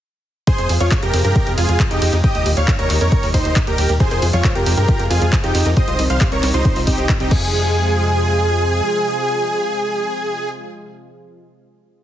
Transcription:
0.47 C3 F3 G#3 F4 G#4 C5, kick, closed hi-hat
0.58 F2, closed hi-hat
0.69 F2, open hi-hat, ride
0.80 F2 F4 C#5, closed hi-hat
0.91 kick, clap, closed hi-hat
1.02 F2 G4 A#4, closed hi-hat
1.14 F2, open hi-hat, ride
1.24 G2 G4 A#4, closed hi-hat
1.36 kick, closed hi-hat
1.47 F2, closed hi-hat
1.58 F2 F4 G#4, open hi-hat, ride
1.69 F2, closed hi-hat
1.80 kick, clap, closed hi-hat
1.91 F2 D#4 G4, closed hi-hat
2.02 F2, open hi-hat, ride
2.13 F2, closed hi-hat
2.24 A#2 D#3 G3 D#4 G4 D#5, kick, closed hi-hat
2.35 D#2, closed hi-hat
2.46 D#2, open hi-hat, ride
2.57 D#2 C#5 F5, closed hi-hat
2.68 kick, clap, closed hi-hat
2.79 D#2 A#4 C#5, closed hi-hat
2.90 D#2, clap, open hi-hat, ride
3.01 F2 A#4 C#5, closed hi-hat
3.12 kick, closed hi-hat
3.23 D#2, open hi-hat
3.34 D#2 D#4 C5, kick, open hi-hat, ride
3.45 D#2, closed hi-hat
3.56 kick, clap, closed hi-hat
3.67 D#2 G4 A#4, closed hi-hat
3.78 D#2, open hi-hat, ride
3.89 D#2, closed hi-hat
4.00 C3 F3 G#3 F4 G#4 C5, kick, closed hi-hat
4.11 F2 A#4, closed hi-hat
4.22 F2 F4, open hi-hat, ride
4.33 F2 F3 F4 C#5, closed hi-hat
4.44 C5, kick, clap, closed hi-hat
4.55 F2 F4 G4 A#4, closed hi-hat
4.66 F2 F4, open hi-hat, ride
4.77 G2 G4 A#4, closed hi-hat
4.88 F4, kick, closed hi-hat
4.99 F2 A#4, closed hi-hat
5.10 F2 F4 G#4, open hi-hat, ride
5.22 F2 F3, closed hi-hat
5.33 C5, kick, clap, closed hi-hat
5.44 F2 D#4 F4 G4, closed hi-hat
5.55 F2 F4, open hi-hat, ride
5.66 F2 A#4, closed hi-hat
5.77 C3 D#3 G3 C4 D#4 G4 C5 D#5, kick, closed hi-hat
5.88 C2 F4, closed hi-hat
5.99 C2 C4, open hi-hat, ride
6.10 C2 C3 C5 F5, closed hi-hat
6.21 G4, kick, clap, closed hi-hat
6.32 C2 C4 A#4 C#5, closed hi-hat
6.43 C2 C4, clap, open hi-hat, ride
6.54 C#2 D#4 F4 C5, closed hi-hat
6.65 C4, kick, closed hi-hat
6.76 C2 F4, open hi-hat
6.87 C2 C4 D#4 G4, kick, open hi-hat, ride
6.98 C2 C5, closed hi-hat
7.09 kick, clap, closed hi-hat
7.20 C2 C3 D#4 G4, closed hi-hat
7.31 F2 C3 F3 G#3 F4 G#4, kick, crash

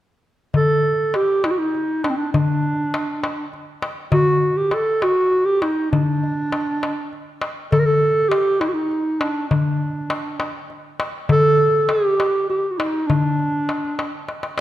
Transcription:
0.54 A4, darbuka dum
1.14 G4, darbuka tek
1.44 D#4, darbuka tek
1.51 F#4
1.58 D#4
1.75 darbuka ka
2.04 D4, darbuka tek
2.10 C4
2.17 D4
2.32 D4, darbuka dum
2.94 darbuka tek
3.24 darbuka tek
3.53 darbuka ka
3.82 darbuka tek
4.12 F#4, darbuka dum
4.57 G4
4.71 A4, darbuka tek
5.02 F#4, darbuka tek
5.32 darbuka ka
5.46 G4
5.62 D#4, darbuka tek
5.91 D4, darbuka dum
6.24 darbuka ka
6.52 darbuka tek
6.67 darbuka ka
6.83 darbuka tek
7.13 darbuka ka
7.42 darbuka tek
7.72 A4, darbuka dum
7.80 A#4
7.86 A4
8.29 G4, darbuka tek
8.61 D#4, darbuka tek
8.68 F#4
8.74 D#4
8.91 darbuka ka
9.20 D4, darbuka tek
9.49 D4, darbuka dum
10.10 darbuka tek
10.40 darbuka tek
10.70 darbuka ka
11.00 darbuka tek
11.29 A4, darbuka dum
11.89 G4, darbuka tek
12.20 darbuka tek
12.50 G4, darbuka ka
12.71 F#4
12.78 D#4, darbuka tek
13.07 D4, darbuka dum
13.39 darbuka ka
13.69 darbuka tek
13.85 darbuka ka
13.99 darbuka tek
14.29 darbuka tek
14.43 darbuka ka

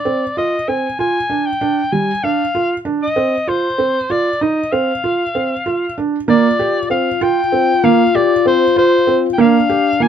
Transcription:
Already playing: D5
0.05 C4
0.37 F4 D#5
0.68 C4 G#5
0.99 F4 G#5
1.30 D4
1.46 G5
1.61 D4
1.92 G3 G#5
2.24 D4 F5
2.55 F4
2.85 D4
3.02 D#5
3.16 C4
3.47 F4 C5
3.78 C4
4.10 F4 D5
4.41 D#4 D#5
4.72 C4 F5
5.04 F4
5.35 C4
5.66 F4
5.98 D4
6.28 A#3 F4 D5
6.59 G4
6.90 C4 F5
7.21 F4 G5
7.52 C4
7.84 A#3 F5
8.15 G4 D5
8.46 C4 C5
8.76 F4 C5
9.07 C4
9.34 G5
9.38 A#3 D4 F5
9.69 G4
10.00 A#3 F4 G#5

